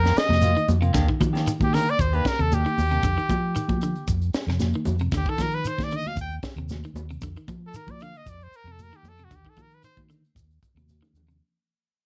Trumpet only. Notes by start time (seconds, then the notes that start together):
Already playing: A#4
0.18 D#5
1.64 G4
1.74 A#4
1.90 D5
2.01 C5
2.15 B4
2.28 A#4
2.42 A4
2.54 G4
5.17 G4
5.29 A4
5.42 A#4
5.55 B4
5.67 C5
5.84 D5
5.96 D#5
6.08 F5
6.21 G5
7.67 A4
7.76 A#4
7.91 D5
8.02 F5
8.17 D#5
8.29 D5
8.43 C5
8.56 A#4
8.72 A4
8.83 A#4
8.96 G4
9.09 A4
9.24 F#4
9.36 G4
9.50 A4
9.62 A#4
9.74 B4
9.85 C5